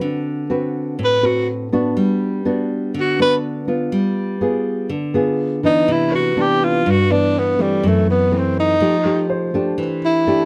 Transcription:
Already playing: nylon-string guitar C4 F#4 B4
0.01 nylon-string guitar D3
0.50 nylon-string guitar C4 F#4 B4
0.99 nylon-string guitar A2
1.04 tenor saxophone B4
1.23 nylon-string guitar C4 F#4 B4, tenor saxophone F#4
1.72 nylon-string guitar B3 D4 F#4
1.97 nylon-string guitar G3
2.45 nylon-string guitar B3 D4 F#4
2.94 nylon-string guitar D3
3.00 tenor saxophone F#4
3.19 nylon-string guitar B3 D4 F#4, tenor saxophone B4
3.68 nylon-string guitar B3 F4
3.92 nylon-string guitar G3
4.41 nylon-string guitar B3 F4 G#4
4.89 nylon-string guitar D3
5.14 nylon-string guitar B3 F4 G#4
5.63 nylon-string guitar E3 B3 D4, tenor saxophone D#4
5.88 nylon-string guitar C3, tenor saxophone E4
6.12 tenor saxophone F#4, grand piano B4
6.37 nylon-string guitar E3 B3 D4
6.41 tenor saxophone G4
6.64 tenor saxophone F4
6.86 nylon-string guitar G2
6.91 tenor saxophone F#4
7.10 nylon-string guitar E3 B3 D4, tenor saxophone D4
7.38 tenor saxophone B3
7.59 nylon-string guitar E3 A3 C4, tenor saxophone G3
7.83 nylon-string guitar F#2
7.87 tenor saxophone A3
8.10 tenor saxophone B3
8.32 nylon-string guitar E3 A3 C4
8.38 tenor saxophone C4
8.60 tenor saxophone D#4
8.80 nylon-string guitar F3 A3 D#4 G4
9.05 nylon-string guitar A3 D#4 G4
9.30 grand piano C5
9.54 nylon-string guitar A3 D4 G4
9.78 nylon-string guitar E3
10.05 tenor saxophone E4
10.27 nylon-string guitar A3 D4 G4

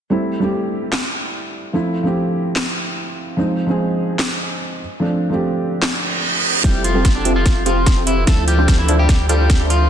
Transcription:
0.10 felt piano G3 A3 C4 E4
0.40 felt piano G3 A3 C4
0.44 felt piano G4
0.93 snare, clap
1.73 felt piano F3 A3 C4 E4
2.03 felt piano F3 A3 C4
2.07 felt piano G4
2.56 snare, clap
3.37 felt piano F3 G#3 C4 D#4
3.66 felt piano F3 G#3 C4
3.71 felt piano G#4
4.19 snare, clap
5.00 felt piano F3 A3 C4 D4
5.30 felt piano F3 A3 C4
5.34 felt piano G4
5.82 snare, clap, reverse cymbal
6.63 sub bass F1, felt piano G3 A3 C4 E4, clean electric guitar G3 G4, supersaw synth C4 F4 G4 A4 E5, kick, snare, closed hi-hat, riser
6.84 clean electric guitar F3 F4, closed hi-hat
6.93 felt piano G3 A3 C4 G4, supersaw synth C4 F4 G4 A4 G5
7.05 kick, snare, closed hi-hat
7.15 clean electric guitar D3 D4
7.25 supersaw synth C4 F4 G4 A4 E5, closed hi-hat
7.36 clean electric guitar F3 F4
7.46 kick, snare, closed hi-hat
7.66 clean electric guitar F3 F4, supersaw synth C4 F4 G4 A4 F5, closed hi-hat
7.86 kick, snare, closed hi-hat
7.97 supersaw synth C4 F4 G4 A4 E5
8.07 clean electric guitar E3 E4, closed hi-hat
8.26 sub bass D2, felt piano F3 A3 C4 E4, clean electric guitar A3 A4, supersaw synth D4 F4 A4 C5 E5, kick, snare, closed hi-hat
8.48 clean electric guitar G3 G4, closed hi-hat
8.56 felt piano F3 A3 C4, supersaw synth D4 F4 A4 C5 G5
8.60 felt piano G4
8.68 kick, snare, closed hi-hat
8.78 clean electric guitar E3 E4
8.88 supersaw synth D4 F4 A4 C5 E5, closed hi-hat
8.99 clean electric guitar G3 G4
9.09 kick, snare, closed hi-hat
9.29 clean electric guitar G3 G4, supersaw synth D4 F4 A4 C5 F5, closed hi-hat
9.50 kick, snare, closed hi-hat
9.60 supersaw synth D4 F4 A4 C5 E5
9.70 clean electric guitar F3 F4, closed hi-hat

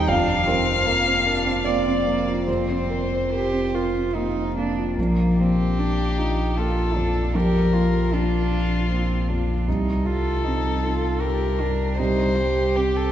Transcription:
Already playing: felt piano G3 C4 G4 A4 G5, violin G5
0.08 sub bass F1, felt piano F2 F5, cello D4, violin F5
0.27 felt piano F4
0.47 cello C4, felt piano A#4
0.66 felt piano C5
0.86 cello A#3, felt piano A#4
1.07 felt piano C4
1.26 cello D4, felt piano A#4
1.45 felt piano C4
1.64 felt piano A#3 D5, cello C4, violin D5
1.86 felt piano C4
2.06 cello A#3, felt piano A#3
2.27 felt piano F4
2.47 felt piano F2 C5, cello C4, violin C5
2.69 felt piano C4
2.90 felt piano A#4
3.12 felt piano C5
3.32 cello G4, felt piano A#4
3.52 felt piano C4
3.74 cello F4, felt piano A#4
3.95 felt piano C4
4.15 felt piano A#3, cello D#4
4.37 felt piano C4
4.57 felt piano A#3, cello D4
4.79 felt piano F4
4.98 sub bass A#1, felt piano A#1, cello A#3
5.38 felt piano A#3, cello C4, violin G4
5.79 cello D4, felt piano D4
6.17 cello D#4, felt piano F4
6.57 felt piano A#3, cello F4, violin A4
6.95 felt piano F2, cello D4
7.35 felt piano A#1, cello G4, violin A#4
7.73 felt piano A#3, cello F4
8.13 felt piano D4, cello D4, violin F4
8.52 felt piano F4
8.90 felt piano A#3, cello C4
9.29 felt piano F2, cello D4
9.67 sub bass C2, felt piano C2, cello D#4
10.05 felt piano G3, cello F4, violin A4
10.44 felt piano C4, cello D#4
10.84 felt piano D#4, cello F4
11.20 felt piano G3, cello G4, violin A#4
11.60 felt piano G2, cello D4
11.98 felt piano C2, cello D#4, violin C5
12.36 felt piano G3, cello G4
12.76 felt piano C4, violin G4
12.96 violin A4

